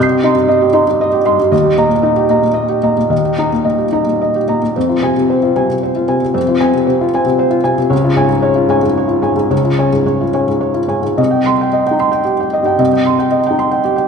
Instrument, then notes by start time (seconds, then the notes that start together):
felt piano
Already playing: C2 D#5 D#6
0.00 G6 C7
0.10 G4
0.24 D#4 D#5 C6
0.35 G2
0.48 G2 D#5
0.62 G4
0.73 D#4 D#5 C6
0.87 G2
1.01 D#5
1.13 G4
1.25 G2 D#5 C6
1.39 G2
1.52 D#2 D#5
1.64 G4
1.78 A#2 D#5 A#5
1.89 A#2
2.03 D#4 D#5
2.16 G4
2.30 A#2 D#5 A#5
2.42 A#2
2.54 D#5
2.69 G4
2.83 A#2 D#5 A#5
2.97 A#2
3.10 D#2 D#5
3.25 G4
3.39 D#4 D#5 A#5
3.53 A#2
3.64 A#2 D#5
3.78 G4
3.93 D#4 D#5 A#5
4.06 A#2
4.22 D#5
4.36 G4
4.48 A#2 D#5 A#5
4.62 A#2
4.76 F2 C5
4.89 F4
5.02 C3 C5 G#5
5.17 C3
5.30 C4 C5
5.43 F4
5.56 C3 C5 G#5
5.69 C3
5.83 C5
5.96 F4
6.08 C3 C5 G#5
6.22 C3
6.34 F2 C5
6.48 F4
6.60 C4 C5 G#5
6.74 C3
6.87 C3 C5
7.01 F4
7.14 C4 C5 G#5
7.26 C3
7.39 C5
7.50 F4
7.64 C3 C5 G#5
7.78 C3
7.90 C#2 C#5
8.04 F4
8.16 G#2 C#5 G#5
8.28 G#2
8.42 C#4 C#5
8.55 F4
8.69 G#2 C#5 G#5
8.83 G#2
8.97 C#5
9.08 F4
9.22 G#2 C#5 G#5
9.36 G#2
9.50 C#2 C#5
9.64 F4
9.78 C#4 C#5 G#5
9.93 G#2
10.06 G#2 C#5
10.21 F4
10.34 C#4 C#5 G#5
10.47 G#2
10.61 C#5
10.74 F4
10.88 G#2 C#5 G#5
11.02 G#2
11.18 C2 D#5
11.31 G5
11.46 C6
11.61 G5
11.73 D#5
11.87 G5
11.91 D#4
12.00 C6
12.12 G5
12.25 G4
12.40 G5
12.53 D#5
12.63 G2 G5
12.79 C2 D#5
12.93 G5
13.06 C6
13.19 G5
13.31 D#5
13.46 G5
13.51 D#4
13.59 C6
13.71 G5
13.85 G4
13.96 G5